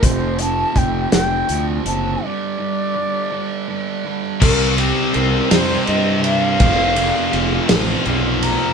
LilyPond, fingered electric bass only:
\new Staff \with { instrumentName = "Fingered electric bass" } { \clef bass \time 6/8 \key f \lydian \tempo 4. = 55 f,,4 f,,8 f,,8 d,8 fis,,8 | r2. | c,4 c,8 f,8 g,4 | f,,4 f,,8 a,,8 b,,4 | }